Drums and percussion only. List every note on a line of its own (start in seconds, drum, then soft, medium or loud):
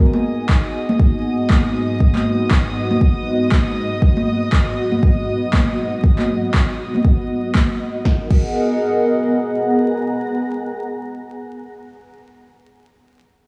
0.13 high conga medium
0.49 kick loud
0.49 clap loud
0.89 high conga medium
1.00 kick loud
1.50 kick loud
1.50 clap loud
1.50 high conga medium
2.00 kick loud
2.14 clap soft
2.14 high conga medium
2.51 kick loud
2.51 clap loud
2.91 high conga medium
3.01 kick loud
3.52 kick loud
3.52 clap loud
3.52 high conga medium
4.02 kick loud
4.17 high conga medium
4.52 kick medium
4.52 clap loud
4.92 high conga medium
5.03 kick loud
5.53 kick medium
5.53 clap loud
5.53 high conga medium
6.04 kick loud
6.18 clap soft
6.18 high conga medium
6.54 kick medium
6.54 clap loud
6.95 high conga medium
7.05 kick loud
7.54 kick medium
7.54 clap loud
7.54 high conga medium
8.05 kick medium
8.05 snare medium
8.31 kick loud
8.31 crash medium